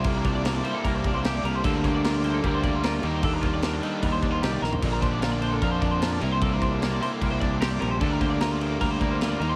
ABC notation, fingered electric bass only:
X:1
M:4/4
L:1/8
Q:1/4=151
K:Gm
V:1 name="Fingered electric bass" clef=bass
C,,3 z C,,3 C,, | D,,4 D,,3 E,,- | E,,3 z E,,2 C,, B,,, | B,,,4 F,,3 C,,- |
C,,3 z C,,3 B,,, | D,,4 D,,3 E,, |]